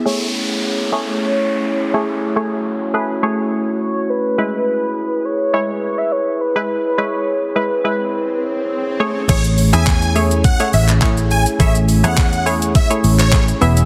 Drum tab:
CC |----------------|----------------|----------------|----------------|
HH |----------------|----------------|----------------|----------------|
SH |----------------|----------------|----------------|----------------|
CP |----------------|----------------|----------------|----------------|
BD |----------------|----------------|----------------|----------------|

CC |x---------------|----------------|
HH |-xox-xox-xox-xox|-xox-xox-xox-xox|
SH |xxxxxxxxxxxxxxxx|xxxxxxxxxxxxxxxx|
CP |----x------xx---|----x------xx---|
BD |o---o---o---o---|o---o---o---o---|